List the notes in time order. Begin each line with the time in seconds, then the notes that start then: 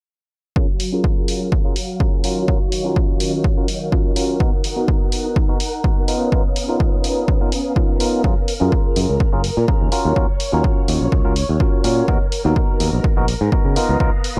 0.56 F#3 C#4 F4 G#4 A#4 F5 A#5, kick
0.80 open hi-hat
0.92 C#4 F4 G#4 A#4
1.04 kick
1.28 open hi-hat
1.52 kick
1.64 C#4 F4 G#4 A#4
1.76 open hi-hat
2.00 C#4 F4 G#4 A#4, kick
2.24 D#3 C#4 F4 F#4 A#4 C#6, open hi-hat
2.48 C#4 F4 F#4 A#4, kick
2.72 open hi-hat
2.84 C#4 F4 F#4 A#4
2.96 kick
3.20 open hi-hat
3.44 kick
3.57 C#4 F4 F#4 A#4
3.68 open hi-hat
3.92 C#4 F4 F#4 A#4, kick
4.16 C#4 F4 F#4 A#4, open hi-hat
4.40 B3 D#4 F#4 A#4 F#5, kick
4.64 open hi-hat
4.76 B3 D#4 F#4 A#4
4.88 kick
5.12 open hi-hat
5.36 kick
5.48 B3 D#4 F#4 A#4
5.60 open hi-hat
5.84 B3 D#4 F#4 A#4, kick
6.08 B3 C#4 D#4 F4 A#4 F5 A#5 D#6, open hi-hat
6.32 B3 D#4 F4 A#4, kick
6.56 open hi-hat
6.68 B3 D#4 F4 A#4
6.80 kick
7.04 open hi-hat
7.28 kick
7.41 B3 D#4 F4 A#4
7.52 open hi-hat
7.76 B3 D#4 F4 A#4, kick
8.00 B3 D#4 F4 A#4, open hi-hat
8.24 F#2 C#4 G#4 A#4 F6, kick
8.48 open hi-hat
8.60 F#2 C#4 F4 G#4 A#4
8.72 kick
8.96 F#2, open hi-hat
9.09 C#2
9.20 kick
9.32 F#1 C#4 F4 G#4 A#4
9.44 open hi-hat
9.57 A#2
9.68 C#4 F4 G#4 A#4, kick
9.81 D#2
9.92 C#4 F4 F#4 A#4 C#5, open hi-hat
10.05 D#2
10.16 D#2 C#4 F4 F#4 A#4, kick
10.40 open hi-hat
10.52 D#2 C#4 F4 F#4 A#4
10.64 kick
10.88 D#2, open hi-hat
11.01 A#1
11.12 C#2, kick
11.24 C#4 F4 F#4 A#4
11.36 open hi-hat
11.49 D#2
11.60 C#4 F4 F#4 A#4, kick
11.84 A#2 C#4 F4 F#4 A#4, open hi-hat
12.08 D#2 B3 D#4 F#4 A#4, kick
12.32 open hi-hat
12.44 D#2 B3 D#4 F#4 A#4
12.56 kick
12.80 D#2, open hi-hat
12.93 A#1
13.04 kick
13.17 A#1 B3 D#4 F#4 A#4
13.28 open hi-hat
13.41 G#2
13.52 B3 D#4 F#4 A#4, kick
13.65 C#3
13.76 B3 D#4 F4 A#4 F5 A#5 D#6, muted fingered electric bass stroke, open hi-hat
13.89 C#2
14.00 C#2 B3 D#4 F4 A#4, kick
14.24 open hi-hat